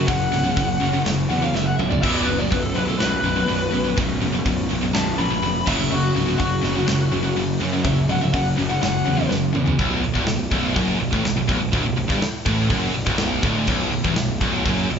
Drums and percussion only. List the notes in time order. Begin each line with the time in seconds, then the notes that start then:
0.08 kick, open hi-hat
0.33 snare, open hi-hat
0.57 kick, open hi-hat
0.83 open hi-hat
1.06 snare, open hi-hat
1.31 open hi-hat
1.55 snare
1.80 mid tom
1.92 floor tom
2.03 kick, splash, crash
2.28 open hi-hat
2.52 kick, open hi-hat
2.76 open hi-hat
3.00 snare, open hi-hat
3.25 open hi-hat
3.49 open hi-hat
3.73 open hi-hat
3.98 kick, open hi-hat
4.22 open hi-hat
4.46 kick, open hi-hat
4.70 open hi-hat
4.95 snare, open hi-hat
5.20 open hi-hat
5.43 open hi-hat
5.67 kick, crash
6.16 open hi-hat
6.40 kick, open hi-hat
6.64 snare, open hi-hat
6.88 snare, open hi-hat
7.13 open hi-hat
7.36 open hi-hat
7.60 open hi-hat
7.84 kick, open hi-hat
8.10 open hi-hat
8.34 kick, open hi-hat
8.59 open hi-hat
8.83 snare, open hi-hat
9.06 open hi-hat
9.31 snare
9.55 mid tom
9.67 floor tom
9.79 kick, open hi-hat
10.03 open hi-hat
10.15 kick
10.27 snare, open hi-hat
10.51 kick, open hi-hat
10.76 kick, open hi-hat
11.01 open hi-hat
11.13 kick
11.25 snare, open hi-hat
11.49 kick, open hi-hat
11.73 kick, open hi-hat
11.98 open hi-hat
12.10 kick, snare
12.22 snare, open hi-hat
12.46 kick, open hi-hat
12.69 kick, open hi-hat
12.94 open hi-hat
13.07 kick
13.18 snare, open hi-hat
13.43 kick, open hi-hat
13.67 kick, crash
13.93 open hi-hat
14.04 kick
14.16 snare, open hi-hat
14.41 kick, open hi-hat
14.66 kick, open hi-hat
14.90 open hi-hat